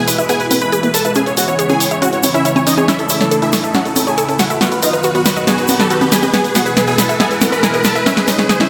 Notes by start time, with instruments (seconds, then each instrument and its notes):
Already playing: analog synth pad B2 E3 G#3 E4, riser
0.08 analog synth bass E2, supersaw synth B4, synth arpeggio sound B5, open hi-hat, shaker
0.18 analog synth bass E2, supersaw synth B4, synth arpeggio sound E5, closed hi-hat, shaker
0.29 synth arpeggio sound B3, supersaw synth G#4 G#5, closed hi-hat, shaker
0.40 analog synth bass E2, supersaw synth B4, closed hi-hat, shaker
0.51 analog synth bass B1, synth arpeggio sound B3, supersaw synth B4, open hi-hat, high conga, shaker
0.61 analog synth bass E2, supersaw synth B4 B5, synth arpeggio sound B4, closed hi-hat, shaker
0.72 synth arpeggio sound G#4, supersaw synth B4, closed hi-hat, shaker
0.83 analog synth bass E2, synth arpeggio sound B3, supersaw synth B4, closed hi-hat, shaker
0.94 analog synth bass E2, supersaw synth A4 A5, synth arpeggio sound B5, open hi-hat, shaker
1.05 analog synth bass E2, supersaw synth B4, synth arpeggio sound E5, closed hi-hat, shaker
1.15 analog synth pad C#3 G#3 E4, synth arpeggio sound C#4, supersaw synth G#4 G#5, closed hi-hat, shaker
1.26 analog synth bass C#2, supersaw synth C#5, closed hi-hat, shaker
1.37 analog synth bass C#2, synth arpeggio sound C#4, supersaw synth F#4 F#5, open hi-hat, shaker
1.48 analog synth bass C#2, supersaw synth C#5, synth arpeggio sound C#5, closed hi-hat, shaker
1.59 synth arpeggio sound G#4, supersaw synth C#5, closed hi-hat, shaker
1.69 analog synth bass C#2, synth arpeggio sound C#4, supersaw synth G#4 G#5, closed hi-hat, shaker
1.80 analog synth bass C#2, supersaw synth C#5, synth arpeggio sound C#6, open hi-hat, shaker
1.91 analog synth bass C#2, supersaw synth C#5, synth arpeggio sound E5, closed hi-hat, shaker
2.02 synth arpeggio sound C#4, supersaw synth F#4 F#5, closed hi-hat, shaker
2.12 analog synth bass C#2, supersaw synth C#5, closed hi-hat, shaker
2.23 analog synth bass B1, synth arpeggio sound E4, supersaw synth C#5, open hi-hat, high conga, shaker
2.34 analog synth bass C#2, synth arpeggio sound C#4, supersaw synth E4 E5, closed hi-hat, shaker
2.45 synth arpeggio sound E4, supersaw synth C#5, closed hi-hat, shaker
2.56 analog synth bass C#2, supersaw synth C#5, synth arpeggio sound G#5, closed hi-hat, high conga, shaker
2.67 analog synth bass C#2, synth arpeggio sound C#4, supersaw synth D#4 D#5, open hi-hat, shaker
2.77 analog synth bass C#2, synth arpeggio sound G#4, supersaw synth C#5, closed hi-hat, high conga, shaker
2.88 analog synth pad C#3 A3, synth arpeggio sound C#4, supersaw synth E4 E5, snare, closed hi-hat, shaker
2.99 analog synth bass A1, supersaw synth A4, closed hi-hat, shaker
3.09 analog synth bass A1, synth arpeggio sound C#4, supersaw synth E4 E5, open hi-hat, shaker
3.21 analog synth bass A1, supersaw synth A4, synth arpeggio sound C#5, snare, closed hi-hat, shaker
3.31 synth arpeggio sound A4, supersaw synth A4, closed hi-hat, shaker
3.42 analog synth bass A1, synth arpeggio sound C#4, supersaw synth E4 E5, closed hi-hat, shaker
3.53 analog synth bass A1, supersaw synth A4, synth arpeggio sound C#6, snare, open hi-hat, shaker
3.64 analog synth bass A1, supersaw synth A4, synth arpeggio sound E5, closed hi-hat, shaker
3.74 synth arpeggio sound C#4, supersaw synth F#4 F#5, snare, closed hi-hat, shaker
3.85 analog synth bass A1, supersaw synth A4, closed hi-hat, shaker
3.96 analog synth bass E1, synth arpeggio sound C#4, supersaw synth A4, open hi-hat, high conga, shaker
4.07 analog synth bass A1, supersaw synth G#4 G#5, synth arpeggio sound C#5, closed hi-hat, shaker
4.18 synth arpeggio sound A4, supersaw synth A4, closed hi-hat, shaker
4.28 analog synth bass A1, synth arpeggio sound C#4, supersaw synth A4, closed hi-hat, shaker
4.39 analog synth bass A1, supersaw synth F#4 F#5, synth arpeggio sound C#6, snare, open hi-hat, shaker
4.50 analog synth bass A1, supersaw synth A4, synth arpeggio sound E5, closed hi-hat, shaker
4.61 analog synth pad D#3 F#3 B3 F#4, synth arpeggio sound B3, supersaw synth F#4 F#5, snare, closed hi-hat, shaker
4.72 analog synth bass B1, supersaw synth B4, closed hi-hat, shaker
4.82 analog synth bass B1, synth arpeggio sound B3, supersaw synth D#4 D#5, open hi-hat, shaker
4.93 analog synth bass B1, synth arpeggio sound B4, supersaw synth B4, closed hi-hat, shaker
5.03 synth arpeggio sound F#4, supersaw synth B4, closed hi-hat, shaker
5.14 analog synth bass B1, synth arpeggio sound B3, supersaw synth F#4 F#5, closed hi-hat, shaker
5.26 analog synth bass B1, supersaw synth B4, synth arpeggio sound B5, snare, open hi-hat, shaker
5.36 analog synth bass B1, supersaw synth B4, synth arpeggio sound D#5, closed hi-hat, shaker
5.47 synth arpeggio sound B3, supersaw synth G#4 G#5, snare, closed hi-hat, shaker
5.58 analog synth bass B1, supersaw synth B4, closed hi-hat, shaker
5.68 analog synth bass A1, synth arpeggio sound B3, supersaw synth B4, open hi-hat, high conga, shaker
5.80 analog synth bass B1, supersaw synth A4 A5, synth arpeggio sound B4, snare, closed hi-hat, shaker
5.90 synth arpeggio sound F#4, supersaw synth B4, closed hi-hat, shaker
6.01 analog synth bass B1, synth arpeggio sound B3, supersaw synth B4, closed hi-hat, high conga, shaker
6.12 analog synth bass B1, supersaw synth G#4 G#5, synth arpeggio sound B5, snare, open hi-hat, shaker
6.22 analog synth bass B1, supersaw synth B4, synth arpeggio sound D#5, closed hi-hat, high conga, shaker
6.33 analog synth pad B2 E3 G#3 E4, synth arpeggio sound B3, supersaw synth G#4 G#5, snare, closed hi-hat, shaker
6.44 analog synth bass E2, supersaw synth B4, closed hi-hat, shaker
6.55 analog synth bass E2, synth arpeggio sound B3, supersaw synth F#4 F#5, snare, open hi-hat, shaker
6.66 analog synth bass E2, synth arpeggio sound B4, supersaw synth B4, closed hi-hat, shaker
6.77 synth arpeggio sound G#4, supersaw synth B4, snare, closed hi-hat, shaker
6.87 analog synth bass E2, synth arpeggio sound B3, supersaw synth G#4 G#5, closed hi-hat, shaker
6.98 analog synth bass E2, supersaw synth B4, synth arpeggio sound B5, snare, open hi-hat, shaker
7.09 analog synth bass E2, supersaw synth B4, synth arpeggio sound E5, closed hi-hat, shaker
7.20 synth arpeggio sound B3, supersaw synth G#4 G#5, snare, closed hi-hat, shaker
7.31 analog synth bass E2, supersaw synth B4, closed hi-hat, shaker
7.41 analog synth bass B1, synth arpeggio sound B3, supersaw synth B4, snare, open hi-hat, high conga, shaker
7.52 analog synth bass E2, supersaw synth B4 B5, synth arpeggio sound B4, closed hi-hat, shaker
7.63 synth arpeggio sound G#4, supersaw synth B4, snare, closed hi-hat, shaker
7.74 analog synth bass E2, synth arpeggio sound B3, supersaw synth B4, closed hi-hat, shaker
7.84 analog synth bass E2, supersaw synth A4 A5, synth arpeggio sound B5, snare, open hi-hat, shaker
7.95 analog synth bass E2, supersaw synth B4, synth arpeggio sound E5, closed hi-hat, shaker
8.06 analog synth pad C#3, synth arpeggio sound C#4, supersaw synth E4 E5, snare, closed hi-hat, shaker
8.17 analog synth bass C#2, supersaw synth G#4, snare, closed hi-hat, shaker
8.28 analog synth bass C#2, synth arpeggio sound C#4, supersaw synth D#4 D#5, snare, open hi-hat, shaker
8.39 analog synth bass C#2, supersaw synth G#4, synth arpeggio sound C#5, snare, shaker
8.49 synth arpeggio sound G#4, supersaw synth G#4, snare, closed hi-hat, shaker
8.60 analog synth bass C#2, synth arpeggio sound C#4, supersaw synth E4 E5, snare, closed hi-hat, shaker